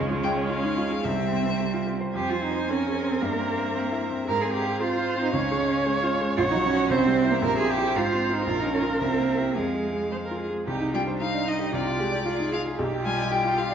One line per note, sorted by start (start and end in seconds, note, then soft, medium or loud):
0.00 1.02 C#2 medium
0.00 1.06 G#3 medium
0.00 1.05 C#4 medium
0.10 0.32 F4 soft
0.23 0.45 G#3 soft
0.23 0.31 G5 medium
0.37 0.59 C#5 soft
0.49 0.72 F4 soft
0.49 1.06 F5 medium
0.63 0.77 D#4 soft
0.77 1.00 F4 soft
0.90 1.05 G#4 soft
1.04 2.12 C2 medium
1.04 1.95 G3 soft
1.04 1.94 C4 soft
1.04 1.88 E5 medium
1.18 1.41 G4 soft
1.32 1.55 C4 soft
1.46 1.69 C5 soft
1.60 1.83 G4 soft
1.74 1.88 F4 soft
1.87 2.10 G4 soft
2.01 2.15 C5 soft
2.14 3.18 F2 soft
2.14 2.31 G4 medium
2.14 2.71 C5 soft
2.14 3.24 G#5 soft
2.30 2.62 C4 soft
2.30 2.45 F4 medium
2.43 2.69 D#4 medium
2.51 2.80 C5 soft
2.68 2.97 C4 soft
2.68 3.11 C#4 medium
2.68 4.27 A#4 soft
2.87 3.15 G#4 soft
3.04 3.22 C4 soft
3.09 3.24 C4 medium
3.21 4.24 G2 soft
3.21 3.31 A#3 soft
3.21 4.31 E5 soft
3.29 3.37 G#3 soft
3.36 4.02 A#3 medium
3.36 3.68 C4 soft
3.57 3.86 C5 soft
3.75 4.03 C4 soft
3.92 4.21 E4 soft
4.11 4.28 C4 soft
4.28 5.31 G#2 medium
4.28 4.82 G#4 medium
4.28 4.43 A#4 medium
4.28 6.38 F5 medium
4.42 4.73 C4 soft
4.42 4.52 G#4 medium
4.53 4.80 G4 medium
4.63 4.91 C5 soft
4.80 5.09 C4 soft
4.80 5.20 F4 medium
4.80 5.33 C5 medium
4.98 5.27 F4 soft
5.16 5.34 C4 soft
5.22 5.33 D#4 medium
5.33 6.35 C#2 medium
5.33 6.11 C#4 medium
5.33 6.36 C#5 medium
5.51 5.79 G#3 soft
5.68 5.97 C#5 soft
5.86 6.14 G#3 soft
6.03 6.31 F4 medium
6.20 6.38 G#3 soft
6.37 6.89 A#1 medium
6.37 6.42 F4 medium
6.37 6.92 C#5 medium
6.37 6.93 F#5 medium
6.51 6.56 D#4 medium
6.55 6.83 F#3 soft
6.64 6.92 C#4 medium
6.73 6.89 F#4 soft
6.73 6.89 C#5 soft
6.90 7.41 C2 medium
6.90 7.32 C4 medium
6.90 7.44 C5 medium
6.90 7.97 E5 medium
7.07 7.36 G3 soft
7.25 7.41 E4 soft
7.25 7.41 C5 soft
7.31 7.42 A#3 medium
7.42 7.93 A#1 medium
7.42 7.96 G4 medium
7.42 7.56 A#4 medium
7.58 7.88 C4 soft
7.58 7.73 G#4 medium
7.71 7.98 G4 medium
7.77 7.93 E4 soft
7.77 7.93 C5 soft
7.95 8.46 G#2 medium
7.95 8.36 F4 medium
7.95 8.46 C5 medium
7.95 9.00 F5 medium
8.12 8.40 C4 soft
8.29 8.45 F4 soft
8.29 8.45 C5 soft
8.34 8.46 D#4 medium
8.47 8.98 A#1 medium
8.47 8.62 F4 medium
8.47 9.53 A#4 medium
8.60 8.73 D#4 medium
8.65 8.93 C#4 soft
8.74 8.82 C#4 medium
8.82 8.99 F4 soft
8.82 8.99 A#4 soft
9.00 9.54 C2 soft
9.00 9.58 C4 medium
9.00 9.58 E5 soft
9.19 9.48 A#3 soft
9.37 9.54 E4 soft
9.37 9.54 G4 soft
9.54 10.64 F2 soft
9.54 10.40 G#3 soft
9.54 10.04 G#4 soft
9.54 10.47 F5 soft
9.74 10.04 G#3 soft
9.93 10.23 G#4 soft
10.11 10.41 G#3 soft
10.11 10.17 C5 soft
10.26 10.39 A#4 soft
10.31 10.60 F4 soft
10.39 10.66 G#4 soft
10.49 10.67 G#3 soft
10.67 11.70 C2 medium
10.67 10.95 D#4 soft
10.67 10.92 G4 soft
10.80 11.02 D#4 soft
10.93 11.15 G3 soft
10.93 11.22 D4 soft
10.93 11.01 F4 soft
10.93 11.03 G5 medium
11.07 11.28 C5 soft
11.19 11.75 D#4 medium
11.19 11.42 D#4 soft
11.19 11.75 D#4 soft
11.19 11.50 F5 medium
11.34 11.47 D4 soft
11.47 11.68 D#4 soft
11.47 11.74 D#5 medium
11.59 11.73 G4 soft
11.73 12.75 C2 medium
11.73 12.02 F4 medium
11.73 12.25 G4 medium
11.73 12.51 D5 medium
11.86 12.08 F4 soft
11.99 12.21 G#3 soft
11.99 12.26 G4 soft
12.12 12.34 D5 soft
12.24 12.50 F4 soft
12.24 12.47 F4 soft
12.24 12.80 G#4 soft
12.39 12.52 D#4 soft
12.51 12.73 F4 soft
12.51 12.59 G#4 soft
12.51 12.61 F5 medium
12.66 12.78 G#4 soft
12.77 13.74 B1 medium
12.77 13.74 G4 medium
12.77 13.04 G4 medium
12.92 13.13 G4 soft
13.05 13.26 G3 soft
13.05 13.74 F4 medium
13.05 13.33 G#5 medium
13.19 13.39 D5 soft
13.31 13.52 G4 soft
13.31 13.59 G5 medium
13.45 13.57 F4 soft
13.57 13.74 G4 soft
13.57 13.74 F5 medium
13.71 13.74 D5 soft